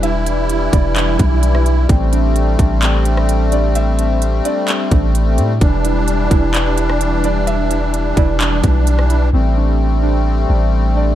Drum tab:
HH |x-x-x-x-x-x-x-x-|x-x-x-x-x-x-x-x-|x-x-x-x-x-x-x-x-|x-x-x-x-x-x-x-x-|
CP |--------x-------|--------x-------|--------x-------|--------x-------|
SD |-------------r--|-----------r----|----------------|-----------r----|
BD |------o---o-----|o-----o---------|----------o-----|o-----o---------|

HH |x-x-x-x-x-x-x-x-|----------------|
CP |--------x-------|----------------|
SD |-------------r--|----------------|
BD |------o---o-----|----------------|